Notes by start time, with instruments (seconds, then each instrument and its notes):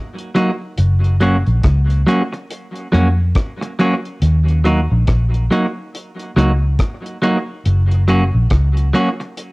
0.18 closed hi-hat
0.35 clean electric guitar F#3 A#3 D#4 F#4, closed hi-hat
0.78 fingered electric bass F#1, closed hi-hat
1.04 closed hi-hat
1.21 clean electric guitar F#3 A#3 C#4 F#4, closed hi-hat
1.47 fingered electric bass A#1, closed hi-hat
1.64 fingered electric bass C#2, kick, cross-stick, closed hi-hat
1.90 closed hi-hat
2.07 clean electric guitar F#3 A#3 C#4 F#4, closed hi-hat
2.33 muted clean electric guitar stroke, closed hi-hat
2.51 closed hi-hat
2.76 closed hi-hat
2.92 fingered electric bass F2, clean electric guitar F#3 A#3 C#4 F#4, closed hi-hat
3.35 kick, cross-stick, closed hi-hat
3.61 muted clean electric guitar stroke, closed hi-hat
3.79 clean electric guitar F#3 A#3 C#4 F#4, closed hi-hat
4.05 closed hi-hat
4.22 fingered electric bass D#2, closed hi-hat
4.48 closed hi-hat
4.64 clean electric guitar F#3 A#3 D#4 F#4, closed hi-hat
4.91 fingered electric bass A#1
5.07 fingered electric bass A#1, kick, cross-stick, closed hi-hat
5.34 closed hi-hat
5.51 clean electric guitar F#3 A#3 D#4 F#4, closed hi-hat
5.95 closed hi-hat
6.19 closed hi-hat
6.36 fingered electric bass C#2, clean electric guitar F#3 A#3 D#4 F#4, cross-stick, closed hi-hat
6.79 kick, cross-stick, closed hi-hat
7.06 closed hi-hat
7.22 clean electric guitar F#3 A#3 D#4 F#4, closed hi-hat
7.66 fingered electric bass F#1, closed hi-hat
7.91 closed hi-hat
8.08 clean electric guitar F#3 A#3 C#4 F#4, closed hi-hat
8.34 fingered electric bass A#1
8.50 fingered electric bass C#2, kick, cross-stick, closed hi-hat
8.77 closed hi-hat
8.93 clean electric guitar F#3 A#3 C#4 F#4, closed hi-hat
9.20 muted clean electric guitar stroke, closed hi-hat
9.37 closed hi-hat